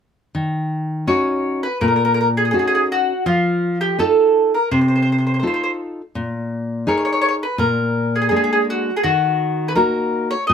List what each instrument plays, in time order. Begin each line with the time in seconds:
0.35 nylon-string guitar D#3
1.07 nylon-string guitar C#4 D#4 F#4, mandolin C#5
1.63 mandolin B4
1.81 nylon-string guitar A#2, mandolin A#4
1.88 mandolin A#4
1.96 mandolin A#4
2.05 mandolin A#4
2.14 mandolin A#4
2.21 mandolin A#4
2.37 mandolin G#4
2.45 mandolin G#4
2.51 nylon-string guitar C#4 D#4 F#4, mandolin G#4
2.59 mandolin G#4
2.68 mandolin G#4
2.75 mandolin G#4
2.92 mandolin F#4
3.26 nylon-string guitar F3, mandolin F4
3.81 mandolin G4
3.99 nylon-string guitar D#4 F4 A4, mandolin A4
4.54 mandolin A#4
4.71 nylon-string guitar C3, mandolin C5
4.81 mandolin C5
4.88 mandolin C5
4.96 mandolin C5
5.02 mandolin C5
5.12 mandolin C5
5.18 mandolin C5
5.27 mandolin C5
5.34 mandolin C5
5.39 nylon-string guitar D#4 F4, mandolin C5
5.44 nylon-string guitar A4, mandolin C5
5.54 mandolin C5
5.63 mandolin C5
6.15 nylon-string guitar A#2
6.87 nylon-string guitar D#4 G#4 A#4, mandolin C#5
6.97 mandolin C#5
7.05 mandolin C#5
7.12 mandolin C#5
7.21 mandolin C#5
7.28 mandolin C#5
7.43 mandolin B4
7.58 nylon-string guitar A#2, mandolin A#4
8.16 mandolin G#4
8.22 mandolin G#4
8.29 nylon-string guitar G#3 A#3 D4, mandolin G#4
8.36 mandolin G#4
8.44 mandolin G#4
8.53 mandolin G#4
8.70 mandolin F#4
8.97 mandolin G#4
9.03 nylon-string guitar D#3, mandolin F#4
9.68 mandolin B4
9.75 nylon-string guitar A#3 D#4 F#4, mandolin A#4
10.31 mandolin C#5
10.47 nylon-string guitar A#2, mandolin D#5